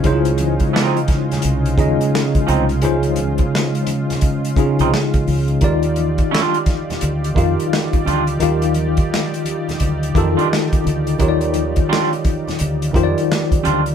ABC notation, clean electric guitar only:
X:1
M:4/4
L:1/16
Q:"Swing 16ths" 1/4=86
K:Ebdor
V:1 name="Clean electric guitar"
z4 [F,CE] z8 z [F,CE] z | z8 z3 [F,CE] z4 | z4 [=G,=DF] z8 z [G,DF] z | z8 z3 [=G,=DF] z4 |
z4 [=G,=DF] z8 z [G,DF] z |]